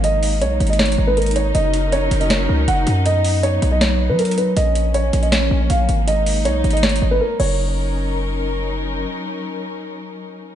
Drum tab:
CC |------------------------------------------------------------------------------------------------|------------------------------------------------------------------------------------------------|------------------------------------------------------------------------------------------------|------------------------------------------------------------------------------------------------|
HH |x-----------o-----------x-----------x---x---x---x---x---x---------------x--x--x--x--x-----------|x-----------x-----------x-----------x-----x-----x-----------------------x-----------x-----------|x-----------o-----------x-----------x-----------x-----------------------x---x---x---x-----------|x-----------x-----------x-----------x-----x-----x-----------------------x-----------x-----------|
SD |------------------------------------------------o-----------------------------------------------|------------------------------------------------o-----------------------------------------------|------------------------------------------------o-----------------------------------------------|------------------------------------------------o-----------------------------------------------|

CC |------------------------------------------------------------------------------------x-----------|------------------------------------------------------------------------------------------------|------------------------------------------------------------------------------------------------|
HH |x-----------o-----------x-----------x---x---x---x---x---x---------------------------------------|------------------------------------------------------------------------------------------------|------------------------------------------------------------------------------------------------|
SD |------------------------------------------------o-----------------------------------------------|------------------------------------------------------------------------------------------------|------------------------------------------------------------------------------------------------|